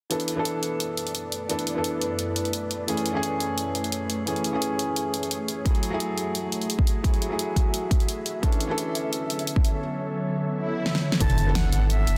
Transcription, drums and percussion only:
0.11 closed hi-hat
0.20 closed hi-hat
0.28 closed hi-hat
0.45 closed hi-hat
0.63 closed hi-hat
0.80 closed hi-hat
0.97 closed hi-hat
1.07 closed hi-hat
1.15 closed hi-hat
1.32 closed hi-hat
1.50 closed hi-hat
1.59 closed hi-hat
1.67 closed hi-hat
1.84 closed hi-hat
2.01 closed hi-hat
2.19 closed hi-hat
2.36 closed hi-hat
2.45 closed hi-hat
2.53 closed hi-hat
2.71 closed hi-hat
2.88 closed hi-hat
2.97 closed hi-hat
3.06 closed hi-hat
3.23 closed hi-hat
3.40 closed hi-hat
3.58 closed hi-hat
3.75 closed hi-hat
3.84 closed hi-hat
3.92 closed hi-hat
4.10 closed hi-hat
4.27 closed hi-hat
4.36 closed hi-hat
4.44 closed hi-hat
4.62 closed hi-hat
4.79 closed hi-hat
4.96 closed hi-hat
5.14 closed hi-hat
5.23 closed hi-hat
5.31 closed hi-hat
5.48 closed hi-hat
5.66 kick, closed hi-hat
5.75 closed hi-hat
5.83 closed hi-hat
6.00 closed hi-hat
6.18 closed hi-hat
6.35 closed hi-hat
6.52 closed hi-hat
6.62 closed hi-hat
6.70 closed hi-hat
6.79 kick
6.87 closed hi-hat
7.04 kick, closed hi-hat
7.14 closed hi-hat
7.22 closed hi-hat
7.39 closed hi-hat
7.56 kick, closed hi-hat
7.74 closed hi-hat
7.91 kick, closed hi-hat
8.00 closed hi-hat
8.09 closed hi-hat
8.26 closed hi-hat
8.43 kick, closed hi-hat
8.52 closed hi-hat
8.60 closed hi-hat
8.78 closed hi-hat
8.95 closed hi-hat
9.13 closed hi-hat
9.30 closed hi-hat
9.39 closed hi-hat
9.47 closed hi-hat
9.56 kick
9.65 closed hi-hat
10.86 snare
10.95 snare
11.12 snare
11.21 kick, closed hi-hat
11.30 closed hi-hat
11.38 closed hi-hat
11.55 snare, closed hi-hat
11.72 closed hi-hat
11.90 closed hi-hat
12.07 closed hi-hat

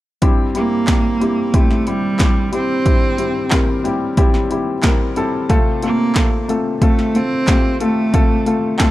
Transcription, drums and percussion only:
0.22 kick, closed hi-hat
0.55 closed hi-hat
0.87 kick, snare, clap, closed hi-hat
1.21 closed hi-hat
1.54 kick, closed hi-hat
1.71 snare
1.87 closed hi-hat
2.19 kick, snare, clap, closed hi-hat
2.53 closed hi-hat
2.86 kick, closed hi-hat
3.18 closed hi-hat
3.51 kick, snare, clap, closed hi-hat
3.85 closed hi-hat
4.17 kick, closed hi-hat
4.34 snare
4.51 closed hi-hat
4.83 kick, snare, clap, closed hi-hat
5.16 closed hi-hat
5.50 kick, closed hi-hat
5.82 closed hi-hat
6.15 kick, snare, clap, closed hi-hat
6.49 closed hi-hat
6.82 kick, closed hi-hat
6.99 snare
7.15 closed hi-hat
7.47 kick, snare, clap, closed hi-hat
7.80 closed hi-hat
8.14 kick, closed hi-hat
8.46 closed hi-hat
8.79 kick, snare, clap, closed hi-hat

